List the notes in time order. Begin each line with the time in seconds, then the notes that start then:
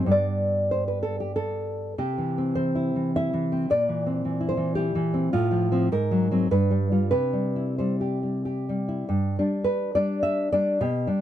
0.06 G2 G3 B3
0.11 D5
0.71 C5
0.88 B4
1.03 A4
1.20 G4
1.36 A4
1.98 C3 G4
2.18 E3
2.38 C4
2.55 E3 C5
2.75 E4
2.96 E3
3.16 E4 E5
3.33 E3
3.52 C4
3.70 A#2 D5
3.89 E3
4.06 C4
4.25 E3
4.41 E4
4.49 C5
4.57 E3
4.75 E4 G4
4.95 E3
5.14 C4
5.33 A2 F4
5.51 F3
5.72 F3 C4
5.92 G#2 A#4
6.11 F#3
6.31 F#3 C4
6.51 G2 B4
6.71 G3
6.92 G3 F4
7.11 C3 B4
7.33 G3
7.56 E4
7.78 G3 C5
8.01 G4
8.23 G3
8.45 G4
8.69 G3
8.88 E4
9.09 G2
9.39 G3 D4
9.64 B4
9.95 G3 D4 D5
10.23 E5
10.52 G3 D4 D5
10.81 B2 G4
11.07 G3 D4